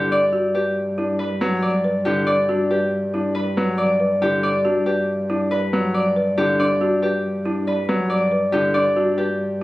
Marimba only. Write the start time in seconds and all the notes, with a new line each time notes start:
Already playing: E4
0.33 F#4
0.55 B4
0.98 E4
1.19 D5
1.42 B4
1.84 B4
2.06 E4
2.49 F#4
2.71 B4
3.14 E4
3.35 D5
3.57 B4
4.00 B4
4.21 E4
4.65 F#4
4.86 B4
5.30 E4
5.52 D5
5.73 B4
6.16 B4
6.38 E4
6.60 D4
6.81 F#4
7.03 B4
7.46 E4
7.67 D5
7.89 B4
8.32 B4
8.53 E4
8.75 D4
8.97 F#4
9.18 B4